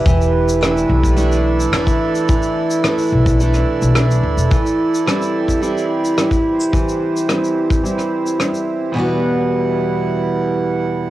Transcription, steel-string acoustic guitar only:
X:1
M:4/4
L:1/8
Q:1/4=108
K:Dmix
V:1 name="Steel-string acoustic guitar"
E,2 [A,DE]2 [A,DE]2 [A,DE]2 | E,2 [A,DE]2 [A,DE]2 [A,DE]2 | E,2 [G,CE]2 [G,CE]2 [G,CE]2 | E,2 [G,CE]2 [G,CE]2 [G,CE]2 |
[E,,B,,E,G,B,F]8 |]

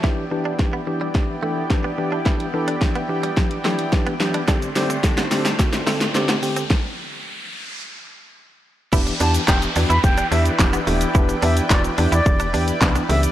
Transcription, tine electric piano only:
X:1
M:4/4
L:1/8
Q:1/4=108
K:Em
V:1 name="Tine electric piano"
[E,DG] [E,DG] [E,DG] [E,DG] [E,DG] [E,DA] [E,DG] [E,DG] | [E,DG] [E,DA] [E,DG] [E,DG] [E,DG] [E,DG] [E,DG] [E,DG] | [D,CG] [D,CG] [D,CG] [D,CG] [D,CF] [D,CA] [D,CG] [D,CG] | z8 |
[E,B,DG] [E,B,DG] [E,B,DG] [E,B,DF] [E,B,DG] [E,B,DG] [E,B,DG] [E,B,DG] | [E,B,DG] [E,B,DG] [E,B,DF] [E,B,DG] [E,B,DG] [E,B,DG] [E,B,DE] [E,B,DG] |]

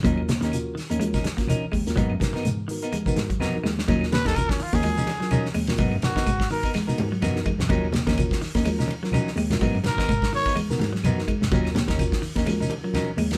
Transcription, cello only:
X:1
M:4/4
L:1/16
Q:"Swing 16ths" 1/4=126
K:Ebm
V:1 name="Cello" clef=bass
E,,2 E,, E,,2 z2 E,,2 z4 z E,, E,, | A,, G,,3 A,,2 z4 A,,2 F,,2 E,,2 | E,,2 E,, E,,2 z2 E,,2 z4 z E,, E,, | A,, G,,3 A,,2 z4 A,,2 G,,2 z G,, |
E,,2 E,, E,,2 z2 E,,2 z4 z E,, G,, | A,, G,,3 A,,2 z4 A,,2 G,,2 z G,, | E,,2 E,, E,,2 z2 E,,2 z4 z E,, E,, |]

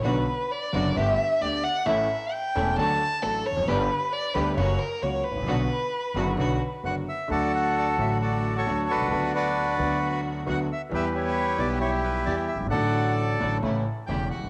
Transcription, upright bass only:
X:1
M:4/4
L:1/16
Q:1/4=133
K:Bm
V:1 name="Upright bass" clef=bass
B,,,3/2 z4 z/2 F,,,3/2 z/2 G,,,3/2 z2 z/2 D,,3/2 z2 z/2 | A,,,3/2 z4 z/2 E,,,3/2 z/2 D,,3/2 z2 z/2 A,,,3/2 z E,,,/2 ^E,,,/2 F,,,/2 | G,,,3/2 z4 z/2 D,,3/2 z/2 F,,,3/2 z2 z/2 C,,3/2 z ^G,,,/2 A,,,/2 ^A,,,/2 | B,,,3/2 z4 z/2 F,,,3/2 z/2 B,,,3/2 z2 z/2 F,,,3/2 z2 z/2 |
[K:D] D,,4- D,,3/2 z/2 A,,,4- A,,,3/2 z/2 D,,3/2 z B,,,/2 =C,,/2 ^C,,/2 | D,,4- D,,3/2 z/2 D,,4- D,,3/2 z/2 D,,3/2 z2 z/2 | E,,4- E,,3/2 z/2 B,,,4- B,,,3/2 z/2 E,,3/2 z F,,,/2 G,,,/2 ^G,,,/2 | A,,,4- A,,,3/2 z/2 A,,,3/2 z/2 A,,,3/2 z2 z/2 E,,,3/2 z F,,,/2 G,,,/2 z/2 |]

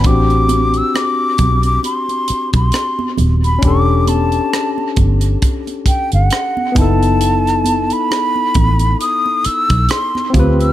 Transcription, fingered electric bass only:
X:1
M:4/4
L:1/16
Q:"Swing 16ths" 1/4=67
K:F#m
V:1 name="Fingered electric bass" clef=bass
A,,,4 z2 B,,,2 z3 B,,, z2 ^D,,,2 | E,,,4 z2 =G,,,2 z3 G,,, z2 F,,,2- | F,,,4 z2 A,,,2 z3 B,,, z2 D,,2 |]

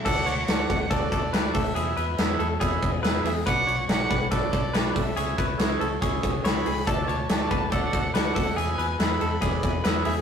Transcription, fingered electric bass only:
X:1
M:4/4
L:1/8
Q:1/4=141
K:Dlyd
V:1 name="Fingered electric bass" clef=bass
D,, D,, D,, D,, D,, D,, D,, D,, | E,, E,, E,, E,, E,, E,, E,, E,, | B,,, B,,, B,,, B,,, B,,, B,,, B,,, B,,, | C,, C,, C,, C,, C,, C,, C,, C,, |
D,, D,, D,, D,, D,, D,, D,, D,, | E,, E,, E,, E,, E,, E,, E,, E,, |]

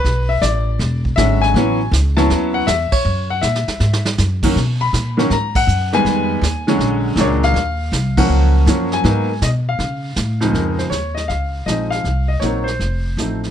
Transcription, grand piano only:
X:1
M:4/4
L:1/8
Q:"Swing" 1/4=160
K:F#
V:1 name="Grand piano"
B =e =d3 z e g- | g2 z =a2 f =e c- | c f =e3 z3 | z b2 z a f2 g- |
g4- g z c e- | e3 f4 g- | g2 d e4 z | [K:Db] B c d e f2 e f- |
f e d c4 z |]
V:2 name="Grand piano" clef=bass
z6 [=D,F,G,C]2 | [=E,F,B,C] z2 [F,B,C=E]3 z2 | z6 z [D,F,A,C] | z3 [D,F,A,C] z3 [D,=G,^G,B,]- |
[D,=G,^G,B,]2 z [=D,F,_A,C]3 [^A,,F,G,=D]2 | z3 [E,F,A,C]3 [E,F,A,C]2 | [F,A,B,D] z6 [C,,E,G,^B,D]- | [K:Db] [^C,,^E,^G,^B,^D]2 z4 [F,A,=C_E]2 |
z2 [G,B,CE] z3 [F,=A,CE]2 |]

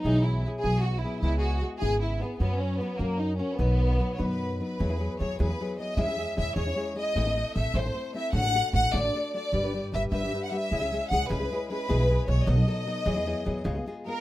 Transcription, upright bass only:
X:1
M:6/8
L:1/8
Q:3/8=102
K:B
V:1 name="Upright bass" clef=bass
B,,,3 B,,,3 | C,,3 G,,,3 | F,,3 F,,3 | B,,,3 F,,3 |
[K:E] E,,2 E,, E,, z2 | E,,2 E,, E,, z2 | A,,,2 A,,, A,,, z2 | A,,,2 A,,, A,,, z2 |
=G,,,2 G,,, G,,, z2 | C,,2 C,, C,, z2 | B,,,2 B,,, B,,, z2 | E,,2 E,, C,, z2 |]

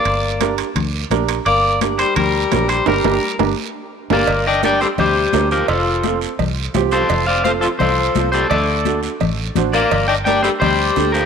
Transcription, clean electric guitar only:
X:1
M:4/4
L:1/8
Q:1/4=170
K:Gm
V:1 name="Clean electric guitar"
d3 z4 z | d2 z c B3 c | B3 z4 [Bd]- | [Bd] [eg] [dg] [Ac] [Gc]3 [GB] |
[FA]3 z4 [Ac]- | [Ac] [df] [cf] [FA] [Ac]3 [Ac] | [Ad]3 z4 [Bd]- | [Bd] [eg] [dg] [Ac] [Gc]3 [GB] |]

